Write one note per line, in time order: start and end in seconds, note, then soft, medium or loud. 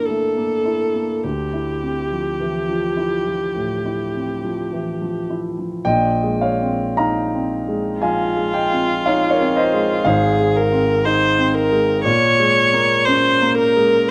0.00 1.26 D3 soft
0.00 0.09 A3 soft
0.00 0.37 A#3 soft
0.00 1.25 D4 soft
0.00 0.65 E4 soft
0.06 0.36 A3 soft
0.06 1.24 A4 soft
0.37 0.82 A#3 soft
0.65 1.11 E4 soft
0.95 1.24 A#3 soft
1.23 3.52 D2 soft
1.23 5.29 G4 soft
1.53 2.00 E4 soft
1.82 2.28 C4 soft
2.12 2.57 F3 soft
2.40 2.69 E3 soft
2.69 3.15 F3 soft
2.97 3.44 E4 soft
3.27 3.73 F3 soft
3.56 4.02 A2 soft
3.86 4.32 E4 soft
4.15 4.61 C4 soft
4.44 4.89 F3 soft
4.73 5.01 E3 soft
5.02 5.46 F3 soft
5.30 5.74 E4 soft
5.58 5.85 F3 soft
5.85 7.98 A#1 soft
5.85 7.98 A#2 medium
5.85 6.37 D#5 medium
5.85 6.40 G5 medium
6.23 6.83 G#3 soft
6.41 6.94 C#5 soft
6.41 6.97 F5 medium
6.61 7.19 C4 soft
6.97 7.54 D#4 soft
6.97 7.98 F5 medium
6.97 8.02 A#5 medium
7.34 7.88 C4 soft
7.68 8.23 G#3 soft
8.00 8.58 F3 soft
8.00 10.08 F4 medium
8.00 8.51 F5 medium
8.00 8.54 G#5 medium
8.37 8.92 G#3 soft
8.54 9.03 D#5 medium
8.54 9.06 G5 medium
8.72 9.27 C4 soft
9.06 9.61 D#4 soft
9.06 9.29 C#5 medium
9.06 9.31 F5 medium
9.31 9.55 A#4 medium
9.31 9.56 C#5 medium
9.40 9.94 C4 soft
9.56 10.04 C5 medium
9.56 10.07 D#5 medium
9.73 10.07 G#3 soft
10.05 12.01 G#1 medium
10.05 12.01 G#2 medium
10.05 10.58 G#4 medium
10.05 13.54 C5 medium
10.05 13.58 F5 medium
10.40 10.93 G#3 soft
10.56 11.06 A#4 medium
10.72 11.25 C4 soft
11.05 11.59 D#4 medium
11.05 11.56 C5 medium
11.38 11.92 C4 medium
11.54 12.03 A#4 medium
11.72 12.05 G#3 soft
12.03 14.06 A#2 medium
12.03 13.06 C#5 medium
12.39 12.94 G#3 medium
12.73 13.28 A#3 medium
13.05 13.62 C#4 medium
13.05 13.56 C5 medium
13.42 13.97 A#3 medium
13.57 14.10 A#4 medium
13.76 14.11 G#3 medium